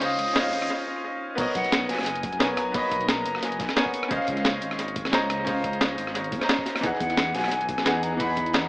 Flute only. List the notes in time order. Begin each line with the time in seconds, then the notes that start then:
0.02 D#6
1.55 F#5
1.89 G#5
2.58 A#5
2.74 B5
3.09 A#5
3.43 G#5
3.77 F#5
4.11 F5
7.01 F#5
7.34 G#5
8.02 A#5
8.19 B5
8.54 A#5